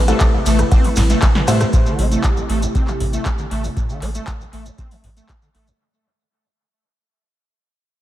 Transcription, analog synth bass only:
0.00 0.12 A1 loud
0.46 0.63 A1 medium
0.97 1.14 A1 loud
1.48 1.65 A2 loud
1.99 2.16 A1 medium
2.50 2.66 A1 medium
3.00 3.17 A1 medium
3.51 3.68 A1 medium
4.02 4.19 A1 medium
4.53 4.70 A1 medium
5.04 5.21 A1 medium
5.55 5.72 A1 medium

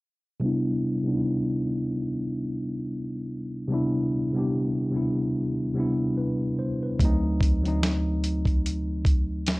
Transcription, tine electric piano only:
0.40 0.80 C3 medium
0.40 0.81 G3 loud
0.40 0.82 B3 medium
0.44 0.83 D4 medium
0.44 0.83 E4 loud
1.03 2.07 C3 medium
1.03 2.08 G3 medium
1.03 2.09 B3 medium
1.08 2.10 D4 medium
1.08 1.13 D#4 medium
1.16 2.14 E4 medium
3.68 4.09 C3 loud
3.68 4.10 G3 medium
3.68 4.10 B3 medium
3.72 4.11 D4 medium
3.72 4.12 E4 loud
4.33 4.73 C3 medium
4.33 4.74 G3 medium
4.33 4.75 B3 medium
4.37 4.75 D4 medium
4.37 4.76 G4 medium
4.91 5.46 C3 medium
4.91 5.47 G3 medium
4.91 5.48 B3 medium
4.95 5.49 D4 medium
4.95 5.49 E4 medium
5.74 6.54 C3 medium
5.74 6.55 G3 medium
5.74 6.56 B3 medium
5.78 6.56 D4 medium
5.78 6.57 E4 medium
6.17 6.56 B4 medium
6.59 6.81 C5 medium
6.83 7.21 B4 medium
6.99 7.39 D2 loud
6.99 7.39 F#3 medium
6.99 7.40 A3 medium
7.03 7.41 C4 medium
7.03 7.42 D#4 loud
7.62 8.66 D2 medium
7.62 8.66 F#3 medium
7.62 8.67 A3 medium
7.66 8.68 C4 medium
7.66 8.68 D#4 medium

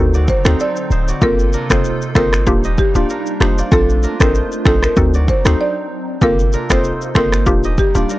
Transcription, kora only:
0.00 0.21 D#4 medium
0.00 0.11 F4 medium
0.00 0.31 A#4 medium
0.00 0.45 C5 medium
0.15 1.09 F#4 medium
0.15 0.53 D5 medium
0.46 0.92 D#4 soft
0.46 0.91 C5 medium
0.60 2.41 C4 medium
0.60 1.29 A4 medium
0.91 1.14 D#4 medium
0.91 1.70 C5 medium
1.08 1.28 F#4 medium
1.08 1.78 D5 medium
1.22 3.16 A#3 medium
1.22 2.64 G4 medium
1.54 1.78 D4 medium
1.54 2.81 A#4 medium
1.71 2.17 D#4 medium
1.71 2.16 C5 medium
2.16 3.02 D#4 medium
2.16 3.35 C5 medium
2.65 4.07 G4 medium
2.65 3.02 D#5 medium
2.96 3.59 F4 medium
2.96 3.48 D5 medium
3.10 3.48 D4 medium
3.10 3.78 A#4 medium
3.41 3.65 D#4 medium
3.41 4.20 C5 medium
3.59 5.11 F4 medium
3.59 4.28 D5 medium
3.72 4.04 D4 medium
3.72 4.10 A4 medium
4.04 4.28 D4 medium
4.04 5.31 A#4 medium
4.21 4.67 D#4 medium
4.21 4.66 C5 medium
4.66 5.21 D#4 medium
4.66 5.45 C5 medium
5.15 6.29 F#4 medium
5.15 5.53 D5 medium
5.46 6.61 D#4 soft
5.46 6.65 C5 medium
6.23 8.16 A#3 medium
6.23 7.64 G4 medium
6.54 6.78 D4 medium
6.54 7.81 A#4 medium
6.71 7.17 D#4 medium
6.71 7.16 C5 medium
7.16 8.02 D#4 medium
7.16 8.19 C5 medium
7.65 8.19 G4 medium
7.65 8.02 D#5 medium
7.96 8.19 F4 medium
7.96 8.19 D5 medium
8.10 8.19 D4 medium
8.10 8.19 A#4 medium

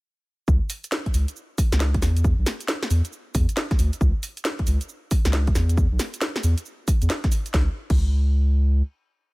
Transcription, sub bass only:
0.48 0.59 C#2 loud
1.14 1.25 C#2 medium
1.72 2.04 C#2 loud
2.02 2.34 E2 loud
2.38 2.45 B1 medium
2.90 3.02 E2 medium
3.35 3.46 E2 loud
3.79 3.90 D2 loud
4.01 4.12 C#2 loud
4.67 4.78 C#2 medium
5.25 5.53 C#2 loud
5.55 5.87 E2 loud
5.92 5.98 B1 medium
6.44 6.55 E2 medium
7.02 7.08 E2 medium
7.54 7.69 C#2 loud
7.90 8.82 C#2 medium

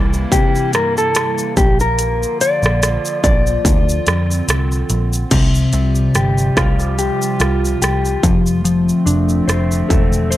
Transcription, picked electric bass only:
0.00 0.24 C2 loud
0.32 0.74 C3 loud
0.74 1.40 G2 medium
1.57 2.24 A#1 loud
2.63 2.96 A#1 loud
3.24 3.57 A#1 loud
3.65 3.98 D2 loud
4.07 4.40 F2 medium
4.49 4.82 C2 loud
4.90 5.23 A#1 loud
5.32 5.65 C2 loud
5.73 6.07 C2 loud
6.15 6.49 G1 medium
6.57 7.09 C2 medium
7.40 7.74 C2 medium
7.82 8.15 C2 medium
8.24 8.90 F1 loud
9.06 9.40 F1 medium
9.48 9.82 F1 medium
9.90 10.37 E1 medium

